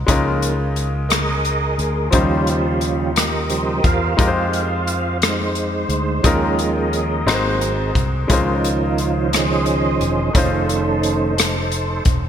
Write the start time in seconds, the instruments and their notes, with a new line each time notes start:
Already playing: grand piano G#2 G#3 C4 F4
0.07 fretless electric bass C#2, grand piano C#3 G#3 C#4 D#4 F4, tonewheel organ F3 A#3 D#4, kick, closed hi-hat
0.11 grand piano A#4
0.42 closed hi-hat
0.76 closed hi-hat
1.09 tonewheel organ G#4 A#4 D#5, cross-stick, closed hi-hat
1.45 closed hi-hat
1.78 fretless electric bass D2, closed hi-hat
2.11 fretless electric bass D#2, tonewheel organ C#3 F3 G3 C#4 F4 G4 C5, grand piano D#3 F3 C#4 D#4 F4, kick, closed hi-hat
2.15 grand piano G3 C5
2.47 closed hi-hat
2.81 closed hi-hat
3.16 tonewheel organ G4 A#4 D#5, cross-stick, closed hi-hat
3.50 tonewheel organ C#3 F3 G3 C5, closed hi-hat
3.84 fretless electric bass E2, tonewheel organ F4 C5 F5, kick, closed hi-hat
4.17 fretless electric bass F2, grand piano G#3 D#4 F4 G4 A#4, tonewheel organ G#3 D#4 G4, kick, closed hi-hat
4.28 grand piano C5
4.53 closed hi-hat
4.87 closed hi-hat
5.22 tonewheel organ G#3 D#4 C5, cross-stick, closed hi-hat
5.55 closed hi-hat
5.89 fretless electric bass D2, closed hi-hat
6.22 fretless electric bass D#2, grand piano D#3 G#3 C#4 D#4 F4 A#4, tonewheel organ F3 G#3 C#4 G#4 A#4 D#5, kick, closed hi-hat
6.59 closed hi-hat
6.93 closed hi-hat
7.26 fretless electric bass G#1, grand piano G#2 G#3 C4 D#4 F#4 A#4, tonewheel organ F#3 A#3 C4, cross-stick, closed hi-hat
7.34 grand piano C5
7.61 closed hi-hat
7.95 fretless electric bass C2, kick, closed hi-hat
8.27 fretless electric bass C#2, grand piano C#3 G#3 C#4 D#4 F4, tonewheel organ D#3 F3 C#4 D#4 F4 A#4, kick, closed hi-hat
8.33 grand piano C5
8.64 closed hi-hat
8.98 tonewheel organ C5, closed hi-hat
9.33 tonewheel organ G#4 C5 D#5, cross-stick, closed hi-hat
9.66 closed hi-hat
10.00 fretless electric bass E1, closed hi-hat
10.33 fretless electric bass F1, tonewheel organ D#3 A3 C5, grand piano A3 C#4 D#4 F4, kick, closed hi-hat
10.37 tonewheel organ C#4 D#4 A4, grand piano C5
10.69 closed hi-hat
11.03 closed hi-hat
11.38 cross-stick, closed hi-hat
11.72 closed hi-hat
12.05 fretless electric bass E1, kick, closed hi-hat